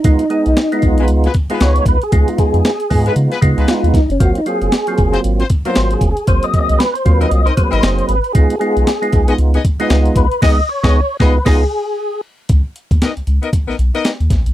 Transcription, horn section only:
X:1
M:4/4
L:1/16
Q:"Swing 16ths" 1/4=116
K:Db
V:1 name="Horn section"
z6 z [A,_CF_c] z [A,CFc] z [A,CFc]3 z2 | z6 z [A,_CF_c] z [A,CFc] z [A,CFc]3 z2 | z6 z [G,CFc] z [G,CFc] z [G,CFc]3 z2 | z6 z [CEBe] z [CEBe] z [CEBe]3 z2 |
z6 z [_CEAe] z [CEAe] z [CEAe]3 z2 | [_CEAe]2 z [CEAe]2 z [CEAe]2 [CEAe]2 z6 | z4 [_CEBe] z2 [CEBe] z [CEBe] z [CEBe]2 z3 |]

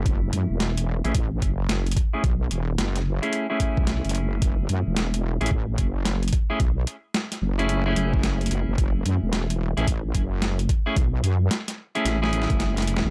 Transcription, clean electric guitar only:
X:1
M:4/4
L:1/16
Q:"Swing 16ths" 1/4=110
K:F#m
V:1 name="Clean electric guitar"
[A,CEG]6- [A,CEG] [A,CEG] z6 z [A,CEG] | z6 z [A,CEG]2 [A,CEG]6- [A,CEG]- | [A,CEG]6- [A,CEG] [A,CEG] z6 z [A,CEG] | z6 z [A,CEG]2 [A,CEG]6- [A,CEG]- |
[A,CEG]6- [A,CEG] [A,CEG] z6 z [A,CEG] | z6 z [A,CEG]2 [A,CEG]6- [A,CEG] |]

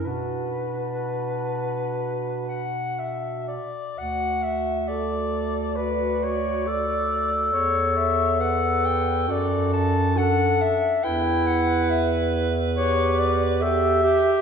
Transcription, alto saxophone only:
X:1
M:4/4
L:1/8
Q:1/4=68
K:Bm
V:1 name="Alto saxophone"
F6- F z | [K:D] F2 A2 d4 | c2 B2 A2 A z | B6 G G |]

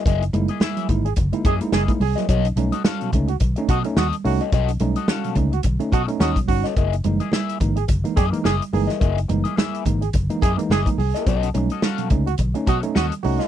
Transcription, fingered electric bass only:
X:1
M:4/4
L:1/16
Q:"Swing 16ths" 1/4=107
K:Gb
V:1 name="Fingered electric bass" clef=bass
G,,,2 G,,, z3 A,,,2 G,,, z G,, z G,,, z =C,, z | C,,2 C,, z3 D,,2 C,, z C, z E,, z =C,, z | C,,2 C,, z3 D,,2 C,, z C, z E,, z =G,,, z | G,,,2 G,,, z3 A,,,2 G,,, z G,, z G,,, z =G,,, z |
G,,,2 G,,, z3 A,,,2 G,,, z G,, z G,,, z =C,, z | C,,2 C,, z3 D,,2 C,, z C, z E,, z =C,, z |]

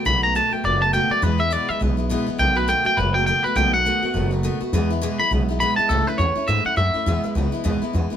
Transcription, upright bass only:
X:1
M:4/4
L:1/8
Q:"Swing" 1/4=206
K:E
V:1 name="Upright bass" clef=bass
B,,,3 z F,,,3 z | E,,3 z B,,,3 z | B,,,3 z F,,,3 z | B,,,3 z F,,,3 z |
E,,3 z B,,,3 z | C,, z E,, z G,, z F,, z | E,, z C,, z D,, z E,, z |]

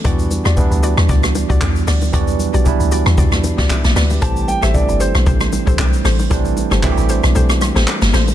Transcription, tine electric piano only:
X:1
M:4/4
L:1/16
Q:"Swing 16ths" 1/4=115
K:Em
V:1 name="Tine electric piano"
z16 | z12 e d B G- | G z12 z3 | z16 |]
V:2 name="Tine electric piano"
[E,G,B,DF]4 [E,G,B,DE]6 z6 | [E,F,G,B,DF]4 [E,G,B,DE]6 z6 | [E,G,A,CG]4 [E,G,A,CD]6 z6 | [E,G,A,CD]4 [E,G,A,CFG]6 z6 |]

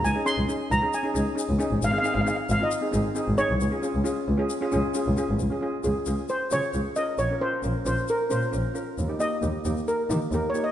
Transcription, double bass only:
X:1
M:4/4
L:1/16
Q:1/4=134
K:Db
V:1 name="Double bass" clef=bass
D,,2 z D,,3 D,,4 D,,3 D,,2 A,,, | A,,,2 z A,,,3 A,,,4 A,,,3 A,,,2 C,, | D,,2 z D,,3 D,,4 D,,3 D,,2 A,,, | D,,4 D,,2 D,,2 z2 D,2 D,,4 |
B,,,4 B,,,2 B,,,2 z2 B,,2 B,,,4 | E,,4 E,,2 E,,2 z2 E,2 E,,4 |]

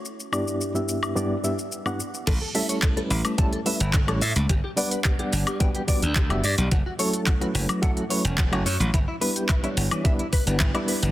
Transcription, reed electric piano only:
X:1
M:4/4
L:1/16
Q:1/4=108
K:Edor
V:1 name="Reed electric piano"
z2 [G,,B,DEGd]3 [G,,B,DEGe]3 [G,,B,DEGd] z [G,,B,DEGe] z2 [G,,B,DEGf] z2 | z2 [G,A,CEA]3 [G,A,CEB]3 [G,A,CEA] z [G,A,CEB] z2 [G,A,CEc] z2 | z2 [G,B,DBf]3 [G,B,Ddf]3 [G,B,DFB] z [G,B,DFd] z2 [G,B,DFe] z2 | z2 [F,A,CEA]3 [F,A,CEB]3 [F,A,CEA] z [F,A,CEB] z2 [F,A,CEc] z2 |
z2 [G,B,DEB]3 [G,B,DEc]3 [G,B,DEB] z2 [G,B,DEB]2 [G,B,DEB]3 |]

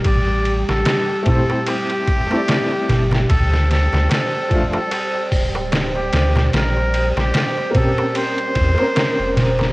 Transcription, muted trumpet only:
X:1
M:4/4
L:1/16
Q:"Swing 16ths" 1/4=74
K:Aphr
V:1 name="Muted trumpet"
d3 A3 A2 G6- G z | A2 A2 A3 A3 z3 G3 | B3 G3 A2 c6- c z |]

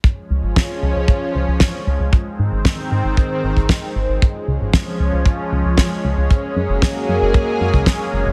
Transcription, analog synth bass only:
X:1
M:4/4
L:1/16
Q:1/4=115
K:Db
V:1 name="Analog synth bass" clef=bass
z2 D,, A,,, z2 D,, D,, z2 D,, D,, z2 D,, D,, | z2 A,, A,,, z2 A,, A,,, z2 A,,, A,,, z2 A,,, A,,, | z2 D,, A,,, z2 D,, D,, z2 D,, D,, z2 D,, D,, | z2 G,, G,,, z2 G,, G,,, z2 G,, D,, z2 G,,, G,,, |]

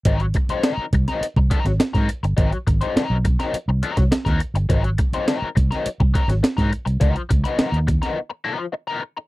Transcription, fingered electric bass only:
X:1
M:4/4
L:1/16
Q:1/4=104
K:Abmix
V:1 name="Fingered electric bass" clef=bass
A,,,2 z4 C,, z2 C,, z A,,, z A,, z =G,,, | A,,, z A,,, z2 _C,,2 z2 =C,, z C,, z E,, z =G,,, | A,,,2 z4 C,, z2 C,, z A,,, z A,, z C,, | D,, z D,, z2 E,,2 z8 z |]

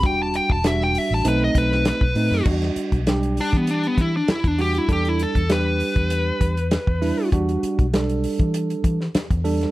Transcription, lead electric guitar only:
X:1
M:4/4
L:1/16
Q:1/4=99
K:Em
V:1 name="Lead electric guitar"
g a g a e g e a B ^d B2 B4 | z6 D B, D B, E D E D G E | G E A2 B12 | z16 |]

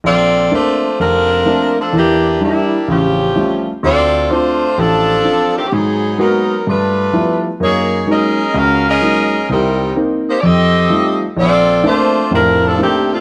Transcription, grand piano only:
X:1
M:4/4
L:1/8
Q:"Swing" 1/4=127
K:Bb
V:1 name="Grand piano"
B,,,2 [A,B,CD] z F,,,2 [A,B,CD] z | [=E,,=E,]2 [G,D=E] z [A,,,^C,]2 [G,A,^C^E] z | D,,2 [CDF] z A,,,2 [CDF] z | _A,,2 [_A,B,_C_G] z =G,,2 [F,G,=A,=B,=E] z |
[_G,,B,]2 [_G,_A,B,E] z [_D,,_D,]2 [G,A,B,E] z | [C,,C,]2 [B,CE] z F,,2 [G,A,EF] z | B,,,2 [A,B,CD] z [F,,,A,,]2 [A,B,CD] z |]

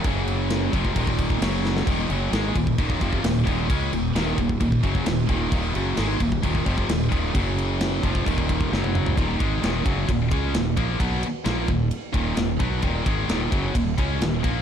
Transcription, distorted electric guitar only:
X:1
M:4/4
L:1/8
Q:1/4=131
K:Ebm
V:1 name="Distorted electric guitar" clef=bass
[G,,D,G,]3 [F,,=C,F,] [E,,B,,E,]2 [G,,D,G,]2 | [E,,B,,E,] [G,,D,G,] [A,,E,A,] [E,,B,,] [E,,B,,E,] [F,,=C,F,] [E,,B,,] [E,,B,,E,] | [D,A,D] [E,,B,,] [E,,B,,E,] [E,,B,,] [E,,B,,] [G,,D,G,] [E,,B,,] [E,,B,,E,] | [E,,B,,E,] [G,,D,G,] [A,,E,A,] [E,,B,,] [E,,B,,E,] [F,,=C,F,] [E,,B,,] [E,,B,,E,] |
[G,,D,G,]3 [F,,=C,F,] [E,,B,,E,]2 [G,,D,G,]2 | [E,,B,,E,] [A,,E,A,] [E,,B,,E,] [G,,D,G,] [E,,B,,] [D,A,D] [E,,B,,] [B,,F,B,] | [C,G,C] z [B,,F,B,] [E,,B,,] z [E,,B,,E,] [E,,B,,] [C,G,C] | [E,,B,,E,] [A,,E,A,] [E,,B,,E,] [G,,D,G,] [E,,B,,] [D,A,D] [E,,B,,] [B,,F,B,] |]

